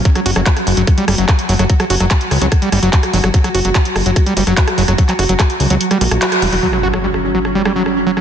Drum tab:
HH |xxoxxxoxxxoxxxox|xxoxxxoxxxoxxxox|xxoxxxoxxxoxxxox|xxoxxxoxxxoxxxoo|
CP |----x-------x---|----x-------x---|----x-------x---|-x--x-------x---|
SD |-r-r-r--r-r-r--r|-r-r--r-r-r--r-r|-r--r-r-r--r-r-r|--r-r----r-r-r--|
BD |o---o---o---o---|o---o---o---o---|o---o---o---o---|o---o-----------|

HH |----------------|
CP |----------------|
SD |-r-r-r--r-r-r--r|
BD |----------------|